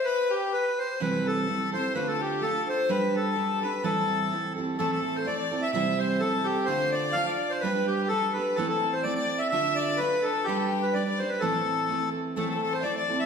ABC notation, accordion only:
X:1
M:2/4
L:1/16
Q:"Swing" 1/4=127
K:Am
V:1 name="Accordion"
B2 G2 B2 c2 | B2 A4 c2 | B A G2 A2 c2 | B2 A4 B2 |
A6 z2 | A A2 c d d2 e | e2 c2 A2 G2 | c2 d2 f d2 c |
B2 G2 A2 B2 | A A2 c d d2 e | e2 d2 B2 A2 | G G2 B d d c B |
A6 z2 | A A/2 A/2 A c d d2 e |]